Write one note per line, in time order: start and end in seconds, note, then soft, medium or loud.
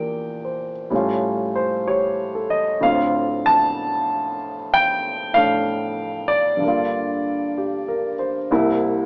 0.00 0.89 E2 soft
0.00 0.90 A#2 soft
0.00 0.92 D4 soft
0.00 0.94 G4 medium
0.00 0.71 A#4 soft
0.00 0.93 G5 loud
0.45 1.11 C5 soft
0.90 2.80 A2 medium
0.90 2.81 G3 soft
0.90 2.82 A3 soft
0.90 2.82 C#4 soft
0.95 2.83 F4 medium
1.55 1.88 C5 medium
1.87 2.62 G4 soft
1.87 2.52 C#5 medium
2.35 3.01 A4 soft
2.50 2.82 D#5 medium
2.81 6.60 D2 soft
2.81 5.32 A2 soft
2.81 6.61 C4 soft
2.81 3.47 F5 medium
2.85 6.62 F4 medium
3.46 4.36 A5 medium
4.74 5.37 G5 loud
5.33 6.60 A2 soft
5.33 6.61 A3 soft
5.33 6.62 D4 soft
5.33 6.32 F5 loud
6.28 8.14 D5 medium
6.57 8.48 G2 soft
6.57 8.50 D3 soft
6.64 8.50 A#3 soft
6.64 8.54 F4 medium
7.58 8.15 G4 soft
7.88 8.36 A#4 soft
8.19 8.68 C5 soft
8.51 9.06 C2 medium
8.51 9.06 C3 medium
8.51 9.06 A#3 soft
8.51 9.06 E4 medium